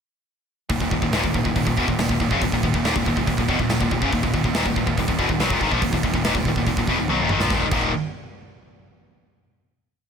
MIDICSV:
0, 0, Header, 1, 4, 480
1, 0, Start_track
1, 0, Key_signature, -6, "minor"
1, 0, Tempo, 428266
1, 788, Time_signature, 4, 2, 24, 8
1, 4625, Tempo, 423729
1, 11385, End_track
2, 0, Start_track
2, 0, Title_t, "Distorted electric guitar"
2, 0, Program_c, 0, 30
2, 790, Note_on_c, 0, 39, 66
2, 794, Note_on_c, 0, 46, 73
2, 900, Note_off_c, 0, 39, 0
2, 900, Note_off_c, 0, 46, 0
2, 913, Note_on_c, 0, 46, 74
2, 914, Note_on_c, 0, 39, 62
2, 1021, Note_off_c, 0, 46, 0
2, 1023, Note_off_c, 0, 39, 0
2, 1035, Note_on_c, 0, 46, 73
2, 1036, Note_on_c, 0, 39, 71
2, 1136, Note_off_c, 0, 39, 0
2, 1139, Note_off_c, 0, 46, 0
2, 1149, Note_on_c, 0, 39, 62
2, 1152, Note_on_c, 0, 46, 72
2, 1261, Note_off_c, 0, 39, 0
2, 1271, Note_off_c, 0, 46, 0
2, 1275, Note_on_c, 0, 39, 99
2, 1284, Note_on_c, 0, 46, 114
2, 1375, Note_off_c, 0, 39, 0
2, 1385, Note_off_c, 0, 46, 0
2, 1389, Note_on_c, 0, 39, 66
2, 1398, Note_on_c, 0, 46, 77
2, 1502, Note_off_c, 0, 39, 0
2, 1505, Note_off_c, 0, 46, 0
2, 1515, Note_on_c, 0, 39, 55
2, 1518, Note_on_c, 0, 46, 65
2, 1621, Note_off_c, 0, 39, 0
2, 1621, Note_off_c, 0, 46, 0
2, 1634, Note_on_c, 0, 39, 68
2, 1635, Note_on_c, 0, 46, 66
2, 1735, Note_off_c, 0, 39, 0
2, 1746, Note_off_c, 0, 46, 0
2, 1748, Note_on_c, 0, 39, 68
2, 1759, Note_on_c, 0, 46, 83
2, 1853, Note_off_c, 0, 39, 0
2, 1859, Note_off_c, 0, 46, 0
2, 1866, Note_on_c, 0, 39, 57
2, 1872, Note_on_c, 0, 46, 79
2, 1988, Note_off_c, 0, 39, 0
2, 1992, Note_off_c, 0, 46, 0
2, 1993, Note_on_c, 0, 40, 91
2, 2005, Note_on_c, 0, 47, 118
2, 2105, Note_off_c, 0, 40, 0
2, 2111, Note_off_c, 0, 47, 0
2, 2119, Note_on_c, 0, 39, 71
2, 2124, Note_on_c, 0, 46, 78
2, 2214, Note_off_c, 0, 39, 0
2, 2223, Note_off_c, 0, 46, 0
2, 2227, Note_on_c, 0, 39, 66
2, 2236, Note_on_c, 0, 46, 69
2, 2349, Note_off_c, 0, 39, 0
2, 2354, Note_off_c, 0, 46, 0
2, 2363, Note_on_c, 0, 39, 64
2, 2367, Note_on_c, 0, 46, 75
2, 2467, Note_off_c, 0, 39, 0
2, 2468, Note_off_c, 0, 46, 0
2, 2480, Note_on_c, 0, 39, 57
2, 2482, Note_on_c, 0, 46, 69
2, 2595, Note_off_c, 0, 39, 0
2, 2597, Note_off_c, 0, 46, 0
2, 2599, Note_on_c, 0, 42, 84
2, 2609, Note_on_c, 0, 49, 106
2, 2708, Note_off_c, 0, 42, 0
2, 2713, Note_off_c, 0, 49, 0
2, 2725, Note_on_c, 0, 39, 71
2, 2728, Note_on_c, 0, 46, 76
2, 2831, Note_off_c, 0, 39, 0
2, 2837, Note_off_c, 0, 46, 0
2, 2844, Note_on_c, 0, 39, 73
2, 2850, Note_on_c, 0, 46, 62
2, 2943, Note_off_c, 0, 39, 0
2, 2949, Note_off_c, 0, 46, 0
2, 2956, Note_on_c, 0, 39, 75
2, 2963, Note_on_c, 0, 46, 75
2, 3067, Note_off_c, 0, 39, 0
2, 3077, Note_off_c, 0, 46, 0
2, 3080, Note_on_c, 0, 39, 65
2, 3090, Note_on_c, 0, 46, 69
2, 3186, Note_off_c, 0, 39, 0
2, 3199, Note_on_c, 0, 39, 93
2, 3200, Note_off_c, 0, 46, 0
2, 3214, Note_on_c, 0, 46, 103
2, 3308, Note_off_c, 0, 39, 0
2, 3315, Note_off_c, 0, 46, 0
2, 3326, Note_on_c, 0, 39, 78
2, 3335, Note_on_c, 0, 46, 84
2, 3430, Note_off_c, 0, 39, 0
2, 3434, Note_off_c, 0, 46, 0
2, 3444, Note_on_c, 0, 39, 54
2, 3447, Note_on_c, 0, 46, 70
2, 3540, Note_off_c, 0, 39, 0
2, 3542, Note_off_c, 0, 46, 0
2, 3553, Note_on_c, 0, 39, 69
2, 3555, Note_on_c, 0, 46, 68
2, 3658, Note_off_c, 0, 39, 0
2, 3662, Note_off_c, 0, 46, 0
2, 3671, Note_on_c, 0, 39, 64
2, 3675, Note_on_c, 0, 46, 78
2, 3790, Note_off_c, 0, 39, 0
2, 3792, Note_off_c, 0, 46, 0
2, 3801, Note_on_c, 0, 39, 59
2, 3808, Note_on_c, 0, 46, 69
2, 3904, Note_off_c, 0, 39, 0
2, 3908, Note_on_c, 0, 40, 95
2, 3913, Note_off_c, 0, 46, 0
2, 3918, Note_on_c, 0, 47, 106
2, 4021, Note_off_c, 0, 40, 0
2, 4026, Note_off_c, 0, 47, 0
2, 4033, Note_on_c, 0, 39, 73
2, 4039, Note_on_c, 0, 46, 88
2, 4137, Note_off_c, 0, 39, 0
2, 4148, Note_off_c, 0, 46, 0
2, 4150, Note_on_c, 0, 39, 67
2, 4162, Note_on_c, 0, 46, 74
2, 4259, Note_off_c, 0, 39, 0
2, 4264, Note_off_c, 0, 46, 0
2, 4272, Note_on_c, 0, 39, 77
2, 4278, Note_on_c, 0, 46, 82
2, 4375, Note_off_c, 0, 39, 0
2, 4377, Note_off_c, 0, 46, 0
2, 4388, Note_on_c, 0, 39, 59
2, 4391, Note_on_c, 0, 46, 68
2, 4501, Note_off_c, 0, 39, 0
2, 4505, Note_on_c, 0, 42, 83
2, 4508, Note_off_c, 0, 46, 0
2, 4522, Note_on_c, 0, 49, 89
2, 4618, Note_off_c, 0, 42, 0
2, 4623, Note_off_c, 0, 49, 0
2, 4628, Note_on_c, 0, 39, 77
2, 4628, Note_on_c, 0, 46, 78
2, 4731, Note_off_c, 0, 39, 0
2, 4736, Note_off_c, 0, 46, 0
2, 4745, Note_on_c, 0, 39, 61
2, 4750, Note_on_c, 0, 46, 73
2, 4852, Note_off_c, 0, 39, 0
2, 4856, Note_off_c, 0, 46, 0
2, 4865, Note_on_c, 0, 39, 73
2, 4869, Note_on_c, 0, 46, 83
2, 4975, Note_off_c, 0, 39, 0
2, 4978, Note_off_c, 0, 46, 0
2, 4989, Note_on_c, 0, 39, 64
2, 4991, Note_on_c, 0, 46, 76
2, 5098, Note_off_c, 0, 39, 0
2, 5109, Note_off_c, 0, 46, 0
2, 5112, Note_on_c, 0, 39, 101
2, 5124, Note_on_c, 0, 46, 107
2, 5223, Note_off_c, 0, 39, 0
2, 5223, Note_off_c, 0, 46, 0
2, 5235, Note_on_c, 0, 39, 62
2, 5237, Note_on_c, 0, 46, 68
2, 5345, Note_off_c, 0, 39, 0
2, 5346, Note_off_c, 0, 46, 0
2, 5358, Note_on_c, 0, 39, 62
2, 5360, Note_on_c, 0, 46, 73
2, 5451, Note_off_c, 0, 39, 0
2, 5458, Note_off_c, 0, 46, 0
2, 5464, Note_on_c, 0, 39, 56
2, 5472, Note_on_c, 0, 46, 59
2, 5586, Note_off_c, 0, 39, 0
2, 5590, Note_off_c, 0, 46, 0
2, 5602, Note_on_c, 0, 39, 72
2, 5604, Note_on_c, 0, 46, 74
2, 5696, Note_off_c, 0, 39, 0
2, 5705, Note_off_c, 0, 46, 0
2, 5710, Note_on_c, 0, 39, 79
2, 5718, Note_on_c, 0, 46, 79
2, 5820, Note_off_c, 0, 39, 0
2, 5824, Note_on_c, 0, 40, 98
2, 5831, Note_off_c, 0, 46, 0
2, 5836, Note_on_c, 0, 47, 115
2, 5939, Note_off_c, 0, 40, 0
2, 5945, Note_off_c, 0, 47, 0
2, 5946, Note_on_c, 0, 39, 77
2, 5956, Note_on_c, 0, 46, 86
2, 6067, Note_off_c, 0, 39, 0
2, 6067, Note_off_c, 0, 46, 0
2, 6072, Note_on_c, 0, 47, 77
2, 6081, Note_on_c, 0, 54, 90
2, 6183, Note_off_c, 0, 47, 0
2, 6187, Note_off_c, 0, 54, 0
2, 6190, Note_on_c, 0, 39, 100
2, 6197, Note_on_c, 0, 46, 95
2, 6302, Note_off_c, 0, 39, 0
2, 6305, Note_off_c, 0, 46, 0
2, 6314, Note_on_c, 0, 44, 82
2, 6326, Note_on_c, 0, 51, 90
2, 6424, Note_off_c, 0, 44, 0
2, 6430, Note_off_c, 0, 51, 0
2, 6441, Note_on_c, 0, 46, 89
2, 6447, Note_on_c, 0, 53, 94
2, 6547, Note_off_c, 0, 46, 0
2, 6550, Note_off_c, 0, 53, 0
2, 6553, Note_on_c, 0, 39, 66
2, 6559, Note_on_c, 0, 46, 78
2, 6664, Note_off_c, 0, 39, 0
2, 6673, Note_off_c, 0, 46, 0
2, 6678, Note_on_c, 0, 39, 69
2, 6686, Note_on_c, 0, 46, 70
2, 6781, Note_off_c, 0, 39, 0
2, 6786, Note_off_c, 0, 46, 0
2, 6795, Note_on_c, 0, 39, 63
2, 6800, Note_on_c, 0, 46, 78
2, 6901, Note_off_c, 0, 39, 0
2, 6908, Note_off_c, 0, 46, 0
2, 6915, Note_on_c, 0, 39, 70
2, 6921, Note_on_c, 0, 46, 63
2, 7020, Note_off_c, 0, 39, 0
2, 7025, Note_off_c, 0, 46, 0
2, 7033, Note_on_c, 0, 39, 83
2, 7038, Note_on_c, 0, 46, 97
2, 7143, Note_off_c, 0, 39, 0
2, 7145, Note_off_c, 0, 46, 0
2, 7157, Note_on_c, 0, 39, 66
2, 7163, Note_on_c, 0, 46, 74
2, 7272, Note_off_c, 0, 39, 0
2, 7275, Note_off_c, 0, 46, 0
2, 7291, Note_on_c, 0, 39, 66
2, 7294, Note_on_c, 0, 46, 65
2, 7386, Note_off_c, 0, 39, 0
2, 7386, Note_off_c, 0, 46, 0
2, 7400, Note_on_c, 0, 39, 64
2, 7400, Note_on_c, 0, 46, 68
2, 7499, Note_off_c, 0, 39, 0
2, 7506, Note_off_c, 0, 46, 0
2, 7512, Note_on_c, 0, 39, 61
2, 7520, Note_on_c, 0, 46, 77
2, 7624, Note_off_c, 0, 39, 0
2, 7627, Note_off_c, 0, 46, 0
2, 7637, Note_on_c, 0, 39, 63
2, 7640, Note_on_c, 0, 46, 72
2, 7751, Note_off_c, 0, 39, 0
2, 7753, Note_off_c, 0, 46, 0
2, 7757, Note_on_c, 0, 40, 90
2, 7766, Note_on_c, 0, 47, 117
2, 7864, Note_off_c, 0, 40, 0
2, 7868, Note_off_c, 0, 47, 0
2, 7874, Note_on_c, 0, 46, 76
2, 7875, Note_on_c, 0, 39, 72
2, 7982, Note_off_c, 0, 46, 0
2, 7986, Note_on_c, 0, 47, 78
2, 7990, Note_off_c, 0, 39, 0
2, 7997, Note_on_c, 0, 54, 87
2, 8098, Note_off_c, 0, 47, 0
2, 8103, Note_off_c, 0, 54, 0
2, 8108, Note_on_c, 0, 39, 83
2, 8117, Note_on_c, 0, 46, 103
2, 8219, Note_off_c, 0, 39, 0
2, 8222, Note_off_c, 0, 46, 0
2, 8227, Note_on_c, 0, 44, 84
2, 8238, Note_on_c, 0, 51, 99
2, 8338, Note_off_c, 0, 44, 0
2, 8344, Note_off_c, 0, 51, 0
2, 8359, Note_on_c, 0, 46, 83
2, 8368, Note_on_c, 0, 53, 96
2, 8464, Note_off_c, 0, 46, 0
2, 8469, Note_off_c, 0, 53, 0
2, 8475, Note_on_c, 0, 39, 99
2, 8484, Note_on_c, 0, 46, 110
2, 8493, Note_on_c, 0, 51, 115
2, 8613, Note_off_c, 0, 39, 0
2, 8618, Note_off_c, 0, 46, 0
2, 8623, Note_off_c, 0, 51, 0
2, 8704, Note_on_c, 0, 39, 107
2, 8717, Note_on_c, 0, 46, 104
2, 8723, Note_on_c, 0, 51, 127
2, 8896, Note_off_c, 0, 39, 0
2, 8902, Note_off_c, 0, 46, 0
2, 8905, Note_off_c, 0, 51, 0
2, 11385, End_track
3, 0, Start_track
3, 0, Title_t, "Picked electric bass"
3, 0, Program_c, 1, 34
3, 777, Note_on_c, 1, 27, 79
3, 887, Note_off_c, 1, 27, 0
3, 894, Note_on_c, 1, 27, 87
3, 1012, Note_off_c, 1, 27, 0
3, 1022, Note_on_c, 1, 27, 82
3, 1137, Note_off_c, 1, 27, 0
3, 1142, Note_on_c, 1, 27, 81
3, 1238, Note_off_c, 1, 27, 0
3, 1244, Note_on_c, 1, 27, 99
3, 1368, Note_off_c, 1, 27, 0
3, 1385, Note_on_c, 1, 27, 70
3, 1499, Note_off_c, 1, 27, 0
3, 1504, Note_on_c, 1, 27, 74
3, 1616, Note_off_c, 1, 27, 0
3, 1623, Note_on_c, 1, 27, 85
3, 1738, Note_off_c, 1, 27, 0
3, 1745, Note_on_c, 1, 27, 81
3, 1854, Note_off_c, 1, 27, 0
3, 1861, Note_on_c, 1, 27, 88
3, 1977, Note_off_c, 1, 27, 0
3, 1987, Note_on_c, 1, 28, 94
3, 2096, Note_off_c, 1, 28, 0
3, 2103, Note_on_c, 1, 27, 78
3, 2218, Note_off_c, 1, 27, 0
3, 2223, Note_on_c, 1, 27, 84
3, 2338, Note_off_c, 1, 27, 0
3, 2348, Note_on_c, 1, 27, 88
3, 2461, Note_off_c, 1, 27, 0
3, 2466, Note_on_c, 1, 27, 83
3, 2575, Note_off_c, 1, 27, 0
3, 2582, Note_on_c, 1, 30, 77
3, 2698, Note_off_c, 1, 30, 0
3, 2710, Note_on_c, 1, 27, 78
3, 2816, Note_off_c, 1, 27, 0
3, 2823, Note_on_c, 1, 27, 77
3, 2938, Note_off_c, 1, 27, 0
3, 2948, Note_on_c, 1, 27, 92
3, 3059, Note_off_c, 1, 27, 0
3, 3065, Note_on_c, 1, 27, 84
3, 3179, Note_off_c, 1, 27, 0
3, 3194, Note_on_c, 1, 27, 100
3, 3304, Note_off_c, 1, 27, 0
3, 3313, Note_on_c, 1, 27, 78
3, 3420, Note_off_c, 1, 27, 0
3, 3427, Note_on_c, 1, 27, 78
3, 3540, Note_off_c, 1, 27, 0
3, 3545, Note_on_c, 1, 27, 91
3, 3659, Note_off_c, 1, 27, 0
3, 3665, Note_on_c, 1, 27, 82
3, 3779, Note_off_c, 1, 27, 0
3, 3789, Note_on_c, 1, 27, 86
3, 3897, Note_off_c, 1, 27, 0
3, 3904, Note_on_c, 1, 28, 96
3, 4017, Note_off_c, 1, 28, 0
3, 4024, Note_on_c, 1, 27, 77
3, 4137, Note_off_c, 1, 27, 0
3, 4160, Note_on_c, 1, 27, 89
3, 4262, Note_off_c, 1, 27, 0
3, 4268, Note_on_c, 1, 27, 94
3, 4375, Note_off_c, 1, 27, 0
3, 4382, Note_on_c, 1, 27, 91
3, 4490, Note_off_c, 1, 27, 0
3, 4497, Note_on_c, 1, 30, 88
3, 4612, Note_off_c, 1, 30, 0
3, 4624, Note_on_c, 1, 27, 82
3, 4736, Note_off_c, 1, 27, 0
3, 4745, Note_on_c, 1, 27, 85
3, 4851, Note_off_c, 1, 27, 0
3, 4857, Note_on_c, 1, 27, 82
3, 4973, Note_off_c, 1, 27, 0
3, 4981, Note_on_c, 1, 27, 77
3, 5095, Note_off_c, 1, 27, 0
3, 5108, Note_on_c, 1, 27, 96
3, 5213, Note_off_c, 1, 27, 0
3, 5220, Note_on_c, 1, 27, 82
3, 5335, Note_off_c, 1, 27, 0
3, 5343, Note_on_c, 1, 27, 76
3, 5457, Note_off_c, 1, 27, 0
3, 5464, Note_on_c, 1, 27, 92
3, 5578, Note_off_c, 1, 27, 0
3, 5587, Note_on_c, 1, 27, 80
3, 5699, Note_off_c, 1, 27, 0
3, 5706, Note_on_c, 1, 27, 90
3, 5815, Note_off_c, 1, 27, 0
3, 5821, Note_on_c, 1, 28, 93
3, 5936, Note_off_c, 1, 28, 0
3, 5944, Note_on_c, 1, 27, 83
3, 6058, Note_off_c, 1, 27, 0
3, 6082, Note_on_c, 1, 35, 107
3, 6172, Note_off_c, 1, 35, 0
3, 6179, Note_on_c, 1, 27, 93
3, 6292, Note_off_c, 1, 27, 0
3, 6299, Note_on_c, 1, 32, 90
3, 6415, Note_off_c, 1, 32, 0
3, 6420, Note_on_c, 1, 34, 100
3, 6535, Note_off_c, 1, 34, 0
3, 6542, Note_on_c, 1, 27, 74
3, 6656, Note_off_c, 1, 27, 0
3, 6662, Note_on_c, 1, 27, 84
3, 6776, Note_off_c, 1, 27, 0
3, 6783, Note_on_c, 1, 27, 89
3, 6893, Note_off_c, 1, 27, 0
3, 6899, Note_on_c, 1, 27, 90
3, 7014, Note_off_c, 1, 27, 0
3, 7040, Note_on_c, 1, 27, 98
3, 7129, Note_off_c, 1, 27, 0
3, 7136, Note_on_c, 1, 27, 81
3, 7248, Note_off_c, 1, 27, 0
3, 7255, Note_on_c, 1, 27, 76
3, 7366, Note_off_c, 1, 27, 0
3, 7372, Note_on_c, 1, 27, 81
3, 7490, Note_off_c, 1, 27, 0
3, 7499, Note_on_c, 1, 27, 86
3, 7609, Note_off_c, 1, 27, 0
3, 7616, Note_on_c, 1, 27, 86
3, 7732, Note_off_c, 1, 27, 0
3, 7737, Note_on_c, 1, 28, 84
3, 7852, Note_off_c, 1, 28, 0
3, 7891, Note_on_c, 1, 27, 73
3, 7991, Note_off_c, 1, 27, 0
3, 7996, Note_on_c, 1, 35, 101
3, 8102, Note_off_c, 1, 35, 0
3, 8121, Note_on_c, 1, 27, 101
3, 8225, Note_off_c, 1, 27, 0
3, 8231, Note_on_c, 1, 32, 102
3, 8340, Note_off_c, 1, 32, 0
3, 8355, Note_on_c, 1, 34, 87
3, 8439, Note_off_c, 1, 34, 0
3, 8446, Note_on_c, 1, 27, 82
3, 8588, Note_off_c, 1, 27, 0
3, 8688, Note_on_c, 1, 27, 104
3, 8918, Note_off_c, 1, 27, 0
3, 11385, End_track
4, 0, Start_track
4, 0, Title_t, "Drums"
4, 781, Note_on_c, 9, 36, 97
4, 783, Note_on_c, 9, 46, 59
4, 893, Note_off_c, 9, 36, 0
4, 895, Note_off_c, 9, 46, 0
4, 901, Note_on_c, 9, 36, 88
4, 1014, Note_off_c, 9, 36, 0
4, 1023, Note_on_c, 9, 36, 90
4, 1135, Note_off_c, 9, 36, 0
4, 1144, Note_on_c, 9, 36, 90
4, 1256, Note_off_c, 9, 36, 0
4, 1263, Note_on_c, 9, 46, 66
4, 1268, Note_on_c, 9, 38, 127
4, 1375, Note_off_c, 9, 46, 0
4, 1380, Note_off_c, 9, 38, 0
4, 1385, Note_on_c, 9, 36, 90
4, 1497, Note_off_c, 9, 36, 0
4, 1506, Note_on_c, 9, 36, 88
4, 1618, Note_off_c, 9, 36, 0
4, 1626, Note_on_c, 9, 36, 83
4, 1738, Note_off_c, 9, 36, 0
4, 1747, Note_on_c, 9, 36, 89
4, 1749, Note_on_c, 9, 46, 64
4, 1859, Note_off_c, 9, 36, 0
4, 1861, Note_off_c, 9, 46, 0
4, 1868, Note_on_c, 9, 36, 93
4, 1980, Note_off_c, 9, 36, 0
4, 1988, Note_on_c, 9, 36, 79
4, 2100, Note_off_c, 9, 36, 0
4, 2107, Note_on_c, 9, 36, 79
4, 2219, Note_off_c, 9, 36, 0
4, 2227, Note_on_c, 9, 46, 63
4, 2232, Note_on_c, 9, 38, 109
4, 2339, Note_off_c, 9, 46, 0
4, 2344, Note_off_c, 9, 38, 0
4, 2346, Note_on_c, 9, 36, 100
4, 2458, Note_off_c, 9, 36, 0
4, 2468, Note_on_c, 9, 36, 88
4, 2580, Note_off_c, 9, 36, 0
4, 2587, Note_on_c, 9, 36, 89
4, 2699, Note_off_c, 9, 36, 0
4, 2706, Note_on_c, 9, 46, 66
4, 2709, Note_on_c, 9, 36, 102
4, 2818, Note_off_c, 9, 46, 0
4, 2821, Note_off_c, 9, 36, 0
4, 2828, Note_on_c, 9, 36, 81
4, 2940, Note_off_c, 9, 36, 0
4, 2949, Note_on_c, 9, 36, 85
4, 3062, Note_off_c, 9, 36, 0
4, 3071, Note_on_c, 9, 36, 87
4, 3183, Note_off_c, 9, 36, 0
4, 3192, Note_on_c, 9, 46, 70
4, 3197, Note_on_c, 9, 38, 113
4, 3304, Note_off_c, 9, 46, 0
4, 3309, Note_off_c, 9, 38, 0
4, 3314, Note_on_c, 9, 36, 99
4, 3426, Note_off_c, 9, 36, 0
4, 3433, Note_on_c, 9, 36, 93
4, 3545, Note_off_c, 9, 36, 0
4, 3551, Note_on_c, 9, 36, 76
4, 3663, Note_off_c, 9, 36, 0
4, 3670, Note_on_c, 9, 36, 81
4, 3673, Note_on_c, 9, 46, 54
4, 3782, Note_off_c, 9, 36, 0
4, 3785, Note_off_c, 9, 46, 0
4, 3789, Note_on_c, 9, 36, 86
4, 3901, Note_off_c, 9, 36, 0
4, 3907, Note_on_c, 9, 36, 82
4, 4019, Note_off_c, 9, 36, 0
4, 4027, Note_on_c, 9, 36, 76
4, 4139, Note_off_c, 9, 36, 0
4, 4142, Note_on_c, 9, 46, 53
4, 4146, Note_on_c, 9, 38, 94
4, 4254, Note_off_c, 9, 46, 0
4, 4258, Note_off_c, 9, 38, 0
4, 4265, Note_on_c, 9, 36, 91
4, 4377, Note_off_c, 9, 36, 0
4, 4386, Note_on_c, 9, 36, 90
4, 4498, Note_off_c, 9, 36, 0
4, 4503, Note_on_c, 9, 36, 84
4, 4615, Note_off_c, 9, 36, 0
4, 4620, Note_on_c, 9, 46, 71
4, 4624, Note_on_c, 9, 36, 98
4, 4733, Note_off_c, 9, 46, 0
4, 4737, Note_off_c, 9, 36, 0
4, 4743, Note_on_c, 9, 36, 82
4, 4857, Note_off_c, 9, 36, 0
4, 4863, Note_on_c, 9, 36, 86
4, 4976, Note_off_c, 9, 36, 0
4, 4982, Note_on_c, 9, 36, 82
4, 5095, Note_off_c, 9, 36, 0
4, 5098, Note_on_c, 9, 46, 57
4, 5103, Note_on_c, 9, 38, 114
4, 5212, Note_off_c, 9, 46, 0
4, 5216, Note_off_c, 9, 38, 0
4, 5225, Note_on_c, 9, 36, 84
4, 5338, Note_off_c, 9, 36, 0
4, 5346, Note_on_c, 9, 36, 86
4, 5459, Note_off_c, 9, 36, 0
4, 5467, Note_on_c, 9, 36, 85
4, 5580, Note_off_c, 9, 36, 0
4, 5587, Note_on_c, 9, 36, 78
4, 5590, Note_on_c, 9, 46, 58
4, 5701, Note_off_c, 9, 36, 0
4, 5703, Note_off_c, 9, 46, 0
4, 5705, Note_on_c, 9, 36, 92
4, 5819, Note_off_c, 9, 36, 0
4, 5827, Note_on_c, 9, 36, 80
4, 5940, Note_off_c, 9, 36, 0
4, 5944, Note_on_c, 9, 36, 84
4, 6058, Note_off_c, 9, 36, 0
4, 6066, Note_on_c, 9, 46, 63
4, 6071, Note_on_c, 9, 38, 99
4, 6180, Note_off_c, 9, 46, 0
4, 6184, Note_off_c, 9, 38, 0
4, 6185, Note_on_c, 9, 36, 122
4, 6298, Note_off_c, 9, 36, 0
4, 6305, Note_on_c, 9, 36, 83
4, 6418, Note_off_c, 9, 36, 0
4, 6424, Note_on_c, 9, 36, 77
4, 6538, Note_off_c, 9, 36, 0
4, 6542, Note_on_c, 9, 46, 67
4, 6544, Note_on_c, 9, 36, 97
4, 6656, Note_off_c, 9, 46, 0
4, 6658, Note_off_c, 9, 36, 0
4, 6665, Note_on_c, 9, 36, 85
4, 6779, Note_off_c, 9, 36, 0
4, 6785, Note_on_c, 9, 36, 94
4, 6898, Note_off_c, 9, 36, 0
4, 6902, Note_on_c, 9, 36, 87
4, 7015, Note_off_c, 9, 36, 0
4, 7024, Note_on_c, 9, 46, 69
4, 7028, Note_on_c, 9, 38, 123
4, 7137, Note_off_c, 9, 46, 0
4, 7141, Note_on_c, 9, 36, 98
4, 7142, Note_off_c, 9, 38, 0
4, 7254, Note_off_c, 9, 36, 0
4, 7260, Note_on_c, 9, 36, 82
4, 7373, Note_off_c, 9, 36, 0
4, 7381, Note_on_c, 9, 36, 82
4, 7494, Note_off_c, 9, 36, 0
4, 7501, Note_on_c, 9, 36, 74
4, 7507, Note_on_c, 9, 46, 54
4, 7614, Note_off_c, 9, 36, 0
4, 7619, Note_on_c, 9, 36, 101
4, 7621, Note_off_c, 9, 46, 0
4, 7732, Note_off_c, 9, 36, 0
4, 7738, Note_on_c, 9, 36, 82
4, 7851, Note_off_c, 9, 36, 0
4, 7971, Note_on_c, 9, 48, 59
4, 8084, Note_off_c, 9, 48, 0
4, 8212, Note_on_c, 9, 45, 97
4, 8325, Note_off_c, 9, 45, 0
4, 8334, Note_on_c, 9, 38, 90
4, 8447, Note_off_c, 9, 38, 0
4, 8450, Note_on_c, 9, 38, 89
4, 8451, Note_on_c, 9, 36, 105
4, 8564, Note_off_c, 9, 36, 0
4, 8564, Note_off_c, 9, 38, 0
4, 8688, Note_on_c, 9, 49, 91
4, 8690, Note_on_c, 9, 36, 108
4, 8801, Note_off_c, 9, 49, 0
4, 8803, Note_off_c, 9, 36, 0
4, 11385, End_track
0, 0, End_of_file